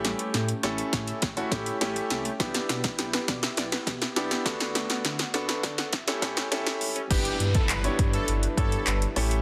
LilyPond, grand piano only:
\new Staff \with { instrumentName = "Grand piano" } { \time 4/4 \key g \lydian \tempo 4 = 102 <a cis' e' g'>8. r16 <a cis' e' a'>4 r16 <a cis' e' fis'>16 <a cis' e' g'>8 <a cis' e' g'>8. r16 | <b d' e' g'>4. r4. <b d' e' g'>8 <b d' fis' a'>8~ | <b d' fis' a'>8. r16 <b d' fis' a'>4 r16 <cis' e' g' a'>16 <cis' e' g' a'>8 <cis' e' g' a'>8. r16 | <b d' e' g' b'>4 r16 <b d' e' g' cis''>4 r16 <b d' e' g' cis''>8. r16 <a cis' e' g' a'>8 | }